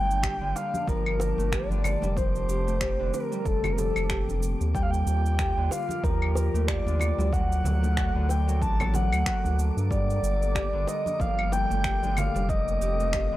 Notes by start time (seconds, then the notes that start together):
Already playing: G1 G3 A3 A#3 D4 G5 A5 D6
0.11 shaker
0.22 G4, finger snap, kick, shaker
0.41 G1 D3
0.56 F5, high bongo, shaker
0.74 high conga, shaker
0.87 G1 F3 A#4, kick, shaker
1.06 claves
1.20 high bongo, shaker
1.37 G1 A3, shaker
1.52 G4 D5, finger snap, kick, shaker
1.69 G1 D3, high conga, shaker
1.84 low conga, claves, shaker
2.02 F1 G3, high bongo, high conga, shaker
2.17 F3 C4 G4 C5, kick, shaker
2.35 shaker
2.48 F1 G4, shaker
2.67 A3, shaker
2.81 G4, finger snap, kick, shaker
2.99 F1 D3
3.14 A#4, high bongo, shaker
3.32 G3, shaker
3.40 A#4
3.46 F1 A4, kick, shaker
3.64 low conga, claves, shaker
3.73 A#4
3.78 A4, low conga, shaker
3.96 F1, claves, shaker
4.10 G4, finger snap, kick, shaker
4.28 F1, high conga, shaker
4.43 shaker
4.61 D#2, shaker
4.74 G3 F4 G4 G5, kick, shaker
4.83 F5
4.91 G5, shaker
5.07 D#2, shaker
5.26 shaker
5.39 G4, finger snap, kick, shaker
5.57 D#2 D3
5.71 F5, high bongo, shaker
5.89 high conga, shaker
6.03 D#2 F3 A#4, kick, shaker
6.22 claves
6.35 high bongo, shaker
6.54 D#2 A3, shaker
6.68 G4 D5, finger snap, kick, shaker
6.86 D#2 D3, high conga, shaker
7.00 low conga, claves, shaker
7.18 D2 G3, high bongo, high conga, shaker
7.32 D3 F#3 A4 F#5, kick, shaker
7.52 shaker
7.64 D2 F#4, low conga, shaker
7.83 A3, high conga, shaker
7.97 F#4, finger snap, kick, shaker
8.15 D2 D3
8.29 G5, high bongo, shaker
8.47 F#3, shaker
8.62 A1 A5, kick, shaker
8.80 low conga, claves, shaker
8.94 F#5, low conga, shaker
9.12 D2, claves, shaker
9.26 F#4, finger snap, kick, shaker
9.44 D2, high conga, shaker
9.59 shaker
9.77 G2, shaker
9.90 G3 A4 D5, kick, shaker
10.10 shaker
10.23 G1, shaker
10.42 shaker
10.55 G4, finger snap, kick, shaker
10.73 G1 D3
10.87 D#5, high bongo, shaker
11.06 high conga, shaker
11.19 G1 F3 F5, kick, shaker
11.39 claves
11.52 G5, high bongo, shaker
11.70 G1 A3, shaker
11.84 G4, finger snap, kick, shaker
12.02 G1 D3, high conga, shaker
12.17 F5, low conga, claves, shaker
12.35 F1 G3, high bongo, high conga, shaker
12.48 F3 C4 G4 D#5, kick, shaker
12.68 shaker
12.81 F1 G4, shaker
13.00 A3, shaker
13.13 G4, finger snap, kick, shaker
13.31 F1 D3